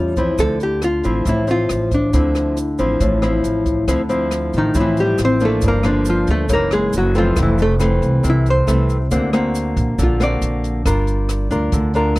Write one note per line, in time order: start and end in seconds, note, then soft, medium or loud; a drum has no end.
0.00 0.36 E2 medium
0.00 0.37 A2 soft
0.00 0.14 G3 soft
0.00 0.14 C#4 soft
0.00 0.14 F4 medium
0.00 0.16 F4 medium
0.16 0.57 F3 medium
0.16 0.58 C4 medium
0.16 0.58 E4 medium
0.16 kick soft
0.16 closed hi-hat soft
0.16 shaker soft
0.38 1.00 D2 medium
0.38 1.24 D3 soft
0.38 0.62 A4 medium
0.38 kick soft
0.38 cross-stick medium
0.38 closed hi-hat soft
0.38 shaker medium
0.60 0.84 G4 medium
0.60 closed hi-hat soft
0.60 shaker soft
0.82 1.24 F4 medium
0.82 cross-stick soft
0.82 closed hi-hat soft
0.82 shaker medium
1.04 1.25 A1 medium
1.04 1.45 F3 medium
1.04 1.45 C4 medium
1.04 1.45 E4 medium
1.04 closed hi-hat soft
1.04 shaker soft
1.25 1.67 A1 medium
1.25 2.11 A2 soft
1.25 1.50 E4 medium
1.25 kick soft
1.25 closed hi-hat soft
1.25 shaker medium
1.47 2.10 F3 medium
1.47 2.10 C4 medium
1.47 1.90 F4 medium
1.47 closed hi-hat soft
1.47 shaker soft
1.69 2.11 A1 medium
1.69 cross-stick medium
1.69 closed hi-hat soft
1.69 shaker medium
1.91 3.42 D4 medium
1.91 kick soft
1.91 closed hi-hat soft
1.91 shaker soft
2.13 2.75 D2 medium
2.13 2.99 D3 soft
2.13 2.57 F3 soft
2.13 2.57 C4 soft
2.13 2.57 E4 medium
2.13 kick medium
2.13 closed hi-hat soft
2.13 shaker medium
2.35 cross-stick soft
2.35 closed hi-hat soft
2.35 shaker soft
2.57 closed hi-hat soft
2.57 shaker medium
2.78 2.99 A1 medium
2.78 3.19 F3 medium
2.78 3.19 C4 medium
2.78 3.19 E4 medium
2.78 closed hi-hat soft
2.78 shaker soft
3.00 3.41 A1 medium
3.00 3.86 A2 soft
3.00 kick soft
3.00 closed hi-hat soft
3.00 shaker medium
3.22 3.84 F3 soft
3.22 3.84 C4 medium
3.22 3.85 E4 medium
3.22 cross-stick medium
3.22 closed hi-hat soft
3.22 shaker soft
3.44 3.85 A1 medium
3.44 closed hi-hat soft
3.44 shaker soft
3.66 kick soft
3.66 closed hi-hat soft
3.66 shaker soft
3.88 4.49 D2 medium
3.88 4.73 D3 soft
3.88 4.01 F3 soft
3.88 4.01 C4 soft
3.88 4.01 E4 medium
3.88 kick soft
3.88 cross-stick medium
3.88 closed hi-hat soft
3.88 shaker medium
4.09 4.71 F3 medium
4.09 4.72 C4 medium
4.09 4.72 E4 medium
4.09 closed hi-hat soft
4.09 shaker soft
4.31 cross-stick soft
4.31 closed hi-hat soft
4.31 shaker medium
4.53 4.74 A1 medium
4.53 closed hi-hat soft
4.53 shaker soft
4.58 4.77 D#3 medium
4.58 4.77 D#4 medium
4.74 5.16 A1 medium
4.74 5.60 A2 medium
4.74 5.37 F3 soft
4.74 5.37 C4 soft
4.74 5.37 E4 medium
4.74 kick medium
4.74 closed hi-hat soft
4.74 shaker medium
4.80 4.99 E3 soft
4.80 4.99 E4 medium
4.97 5.20 G3 medium
4.97 5.20 G4 medium
4.97 closed hi-hat soft
4.97 shaker soft
5.18 5.59 A1 medium
5.18 cross-stick medium
5.18 closed hi-hat soft
5.18 shaker medium
5.25 5.43 C4 medium
5.25 5.43 C5 medium
5.40 5.81 F3 medium
5.40 5.81 A#3 medium
5.40 5.81 D4 medium
5.40 closed hi-hat soft
5.40 shaker soft
5.45 5.64 A3 medium
5.45 5.64 A4 medium
5.61 6.23 G1 medium
5.61 6.48 G2 soft
5.61 kick medium
5.61 closed hi-hat soft
5.61 shaker medium
5.68 5.86 A#3 medium
5.68 5.86 A#4 medium
5.83 6.46 F3 medium
5.83 6.46 A#3 medium
5.83 6.46 D4 medium
5.83 cross-stick medium
5.83 closed hi-hat soft
5.83 shaker soft
5.88 6.07 D3 soft
5.88 6.07 D4 soft
6.05 closed hi-hat soft
6.05 shaker medium
6.09 6.29 F3 medium
6.09 6.29 F4 medium
6.27 6.48 D2 medium
6.27 6.50 A3 medium
6.27 closed hi-hat soft
6.27 shaker soft
6.31 6.51 A4 medium
6.49 6.90 F#1 medium
6.49 7.34 F#2 medium
6.49 7.11 E3 medium
6.49 7.12 A#3 medium
6.49 7.12 D#4 soft
6.49 kick medium
6.49 closed hi-hat soft
6.49 shaker medium
6.53 6.73 A#3 medium
6.53 6.72 A#4 medium
6.71 6.94 G#3 medium
6.71 6.93 G#4 medium
6.71 cross-stick medium
6.71 closed hi-hat soft
6.71 shaker soft
6.93 7.34 F#1 medium
6.93 closed hi-hat soft
6.93 shaker medium
6.98 7.17 F#3 medium
6.98 7.17 F#4 medium
7.15 7.55 E3 medium
7.15 7.38 F3 medium
7.15 7.55 A3 medium
7.15 7.55 C4 medium
7.15 7.38 F4 medium
7.15 closed hi-hat soft
7.15 shaker soft
7.36 7.98 F1 medium
7.36 8.22 F2 soft
7.36 kick medium
7.36 cross-stick medium
7.36 closed hi-hat soft
7.36 shaker medium
7.42 7.61 E3 soft
7.42 7.61 E4 soft
7.58 7.74 A3 medium
7.58 7.74 A4 medium
7.58 closed hi-hat soft
7.58 shaker soft
7.79 8.64 E3 medium
7.79 8.64 A3 medium
7.79 8.64 C4 medium
7.79 cross-stick medium
7.79 closed hi-hat soft
7.79 shaker medium
8.02 8.22 C2 medium
8.02 closed hi-hat soft
8.02 shaker soft
8.23 8.65 C2 loud
8.23 9.09 C3 medium
8.23 kick medium
8.23 closed hi-hat soft
8.23 shaker medium
8.30 8.48 E4 medium
8.46 closed hi-hat soft
8.46 shaker soft
8.50 9.09 C5 medium
8.67 9.08 C2 medium
8.67 8.97 E3 medium
8.67 8.97 A3 medium
8.67 8.97 C4 medium
8.67 cross-stick medium
8.67 closed hi-hat soft
8.67 shaker medium
8.90 closed hi-hat soft
8.90 shaker soft
9.11 9.73 D2 medium
9.11 9.96 D3 soft
9.11 9.29 A#3 soft
9.11 9.30 C4 soft
9.11 9.30 F#4 medium
9.11 kick medium
9.11 closed hi-hat soft
9.11 shaker medium
9.33 10.17 A#3 medium
9.33 10.17 C4 medium
9.33 10.17 F#4 medium
9.33 cross-stick medium
9.33 closed hi-hat soft
9.33 shaker soft
9.55 closed hi-hat soft
9.55 shaker medium
9.77 9.97 A#1 medium
9.77 kick medium
9.77 closed hi-hat soft
9.77 shaker soft
9.98 10.39 A#1 medium
9.98 10.83 D3 medium
9.98 kick soft
9.98 closed hi-hat soft
9.98 shaker medium
10.03 10.22 F4 medium
10.20 10.82 A#3 medium
10.20 10.82 C4 medium
10.20 10.82 F#4 medium
10.20 10.83 D5 medium
10.20 cross-stick medium
10.20 closed hi-hat soft
10.20 shaker soft
10.42 10.82 A#1 medium
10.42 closed hi-hat soft
10.42 shaker medium
10.64 closed hi-hat soft
10.64 shaker soft
10.85 11.47 G1 medium
10.85 11.71 G3 medium
10.85 11.48 D4 soft
10.85 11.48 F4 soft
10.85 11.48 A#4 soft
10.85 kick medium
10.85 cross-stick medium
10.85 closed hi-hat soft
10.85 shaker medium
11.07 closed hi-hat soft
11.07 shaker soft
11.29 cross-stick soft
11.29 closed hi-hat soft
11.29 shaker medium
11.50 11.71 D2 medium
11.50 11.91 D4 medium
11.50 11.91 F4 medium
11.50 11.92 A#4 medium
11.50 closed hi-hat soft
11.50 shaker soft
11.72 12.13 D2 medium
11.72 12.19 D3 soft
11.72 kick medium
11.72 closed hi-hat soft
11.72 shaker medium
11.94 12.19 D4 medium
11.94 12.19 F4 medium
11.94 12.19 A#4 medium
11.94 closed hi-hat soft
11.94 shaker soft
12.16 cross-stick medium
12.16 closed hi-hat soft